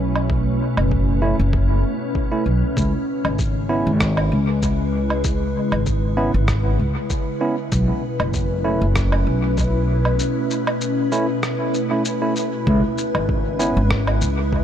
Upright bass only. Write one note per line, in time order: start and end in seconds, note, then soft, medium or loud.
0.00 0.58 B1 medium
0.77 1.36 F#1 medium
1.39 1.82 F#1 medium
2.46 2.61 B1 medium
2.77 2.92 C#2 medium
3.25 3.83 G#1 medium
3.87 4.29 G#1 medium
4.32 5.53 C#2 medium
5.72 6.31 G#1 medium
6.34 6.76 G#1 medium
6.79 6.94 C#2 medium
7.72 7.87 B1 loud
8.20 8.78 F#1 medium
8.82 9.24 F#1 loud
9.27 10.19 B1 medium
12.67 12.82 C#2 loud
13.15 13.73 G#1 medium
13.77 14.19 G#1 loud
14.22 14.64 C#2 medium